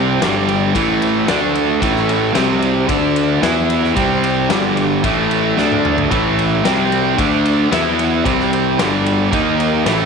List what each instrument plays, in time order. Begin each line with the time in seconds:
Already playing: fingered electric bass C2, overdriven electric guitar C3 G3 C4, tonewheel organ C4 G4 C5
0.22 fingered electric bass G1, overdriven electric guitar G2 D3 G3, tonewheel organ D4 G4 D5, snare, ride
0.48 ride
0.75 fingered electric bass A1, overdriven electric guitar A2 E3 A3, tonewheel organ E4 A4 C#5, kick, ride
1.02 ride
1.28 fingered electric bass D2, overdriven electric guitar D3 A3 D4, tonewheel organ D4 A4 D5, snare, ride
1.55 ride
1.82 fingered electric bass A1, overdriven electric guitar A2 E3 A3, tonewheel organ E4 A4 C#5, kick, ride
1.96 snare
2.09 ride
2.35 fingered electric bass C2, overdriven electric guitar C3 G3 C4, tonewheel organ C4 G4 C5, snare, ride
2.62 ride
2.89 fingered electric bass D2, overdriven electric guitar D3 A3 D4, tonewheel organ D4 A4 D5, kick, ride
3.16 ride
3.42 fingered electric bass E2, overdriven electric guitar E3 B3 E4, tonewheel organ B3 E4 B4, snare, ride
3.70 ride
3.84 snare
3.96 fingered electric bass C2, overdriven electric guitar C3 G3 C4, tonewheel organ C4 G4 C5, kick, ride
4.24 ride
4.49 fingered electric bass G1, overdriven electric guitar G2 D3 G3, tonewheel organ D4 G4 D5, snare, ride
4.77 ride
5.02 fingered electric bass A1, overdriven electric guitar A2 E3 A3, tonewheel organ E4 A4 C#5, kick, ride
5.31 ride
5.56 fingered electric bass D2, overdriven electric guitar D3 A3 D4, tonewheel organ D4 A4 D5, snare
5.71 high tom
5.85 mid tom
5.98 floor tom
6.11 fingered electric bass A1, overdriven electric guitar A2 E3 A3, tonewheel organ E4 A4 C#5, kick, ride
6.39 ride
6.64 fingered electric bass C2, overdriven electric guitar C3 G3 C4, tonewheel organ C4 G4 C5, snare, ride
6.92 ride
7.17 fingered electric bass D2, overdriven electric guitar D3 A3 D4, tonewheel organ D4 A4 D5, kick, ride
7.45 ride
7.70 fingered electric bass E2, overdriven electric guitar E3 B3 E4, tonewheel organ B3 E4 B4, snare, ride
7.99 ride
8.24 fingered electric bass C2, overdriven electric guitar C3 G3 C4, tonewheel organ C4 G4 C5, kick, ride
8.40 snare
8.53 ride
8.78 fingered electric bass G1, overdriven electric guitar G2 D3 G3, tonewheel organ D4 G4 D5, snare, ride
9.06 ride
9.32 fingered electric bass D#2, overdriven electric guitar D#3 A#3 D#4, tonewheel organ D#4 A#4 D#5, kick, ride
9.60 ride
9.85 fingered electric bass A1, overdriven electric guitar A2 E3 A3, tonewheel organ E4 A4 C#5, snare, ride